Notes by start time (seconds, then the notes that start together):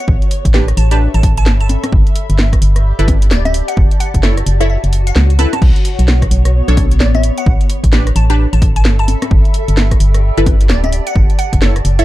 Already playing: B3 F#4 A4 C#5
0.00 F#5
0.08 A1, kick
0.22 closed hi-hat
0.28 E5, open hi-hat
0.45 A1, kick, closed hi-hat
0.54 D4 G4 B4, snare
0.68 B5, cross-stick, closed hi-hat
0.77 A1 A5, open hi-hat
0.91 D4 G4 B4 A5, closed hi-hat
1.14 A1 A5, closed hi-hat
1.23 kick, open hi-hat
1.37 A5, closed hi-hat
1.46 G1, snare
1.60 A5, closed hi-hat
1.69 G4, open hi-hat, high conga
1.84 cross-stick, closed hi-hat, high conga
1.92 G1, kick
2.00 D5
2.07 closed hi-hat
2.16 open hi-hat
2.30 G1, closed hi-hat
2.39 snare
2.52 A5, kick, cross-stick, closed hi-hat
2.62 G1, open hi-hat
2.76 cross-stick, closed hi-hat
2.99 G1 E4 A4 B4, closed hi-hat
3.08 kick, open hi-hat, high conga
3.22 closed hi-hat
3.31 D1 D5, snare
3.45 E5, closed hi-hat, high conga
3.54 open hi-hat
3.68 F#5, closed hi-hat
3.77 F#1 F#4, kick
3.91 closed hi-hat
4.00 F#5, open hi-hat
4.14 F#1, kick, closed hi-hat
4.23 E4 A4 C#5, snare
4.37 cross-stick, closed hi-hat
4.46 F#1, open hi-hat
4.53 C#5
4.60 E4 A4 C#5 E5 F#5, cross-stick, closed hi-hat
4.70 E5
4.84 F#1, closed hi-hat
4.93 open hi-hat
5.07 F#5, closed hi-hat
5.16 C#2, snare
5.30 closed hi-hat
5.39 E4 A4 B4 A5, open hi-hat, high conga
5.53 A5, cross-stick, closed hi-hat, high conga
5.62 B1 B3, kick, crash
5.76 closed hi-hat
5.85 open hi-hat
5.99 B1, closed hi-hat
6.08 snare
6.22 kick, cross-stick, closed hi-hat
6.31 B1, open hi-hat
6.45 cross-stick, closed hi-hat
6.68 B1 D4 A4 C#5, closed hi-hat
6.77 kick, open hi-hat, high conga
6.91 closed hi-hat
7.00 A1 D5, snare
7.15 E5, closed hi-hat, high conga
7.23 A4, open hi-hat
7.38 F#5, closed hi-hat
7.46 A1, kick
7.61 closed hi-hat
7.70 open hi-hat
7.84 A1, kick, closed hi-hat
7.90 D4 G4 B4 E5, snare
8.07 B5, cross-stick, closed hi-hat
8.16 A1 A5, open hi-hat
8.30 D4 G4 B4 A5, closed hi-hat
8.53 A1 A5, closed hi-hat
8.62 kick, open hi-hat
8.76 A5, closed hi-hat
8.85 G1, snare
8.99 A5, closed hi-hat
9.08 G4, open hi-hat, high conga
9.22 cross-stick, closed hi-hat, high conga
9.29 G1 D5, kick
9.45 closed hi-hat
9.54 open hi-hat
9.68 G1, closed hi-hat
9.77 snare
9.91 kick, cross-stick, closed hi-hat
9.97 G1 A5, open hi-hat
10.14 cross-stick, closed hi-hat
10.37 G1 E4 A4 B4, closed hi-hat
10.46 kick, open hi-hat, high conga
10.61 closed hi-hat
10.69 D1 D5, snare
10.84 E5, closed hi-hat, high conga
10.92 open hi-hat
11.07 F#5, closed hi-hat
11.16 F#1 F#4, kick
11.30 closed hi-hat
11.39 F#5, open hi-hat
11.50 F#1 C#5, kick, closed hi-hat
11.62 E4 A4 C#5, snare
11.76 cross-stick, closed hi-hat
11.85 F#1, open hi-hat
11.99 E4 A4 C#5 E5, closed hi-hat